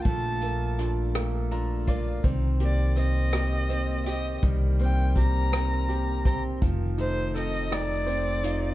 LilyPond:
<<
  \new Staff \with { instrumentName = "Violin" } { \time 6/8 \key c \dorian \tempo 4. = 55 a''4 r2 | r8 d''8 ees''4. ees''8 | r8 g''8 bes''4. bes''8 | r8 c''8 ees''8 d''4. | }
  \new Staff \with { instrumentName = "Grand piano" } { \time 6/8 \key c \dorian <f bes f'>8 bes8 f'8 bes8 <f' bes''>8 <bes d''>8 | c'8 g'8 c'8 g'8 c'8 g'8 | g8 c'8 g'8 c'8 g'8 c'8 | f8 ees'8 a'8 ees'8 c'8 ees'8 | }
  \new Staff \with { instrumentName = "Clean electric guitar" } { \time 6/8 \key c \dorian <a d' f'>8 a8 d'8 a8 d'8 f'8 | ees8 bes8 c'8 bes8 c'8 g'8 | ees8 bes8 c'8 bes8 c'8 g'8 | ees8 a8 c'8 a8 c'8 f'8 | }
  \new Staff \with { instrumentName = "Upright bass" } { \clef bass \time 6/8 \key c \dorian bes,,2. | c,2. | c,2. | f,,2. | }
  \new DrumStaff \with { instrumentName = "Drums" } \drummode { \time 6/8 <hh bd>8 hh8 <hh ss>8 <hh ss>8 hh8 <hh bd>8 | <hh bd>8 hh8 hh8 <hh ss>8 hh8 hh8 | <hh bd>8 hh8 <hh bd>8 <hh ss>8 hh8 <hh bd>8 | <hh bd>8 hh8 <hh ss>8 <hh ss>8 hh8 hh8 | }
>>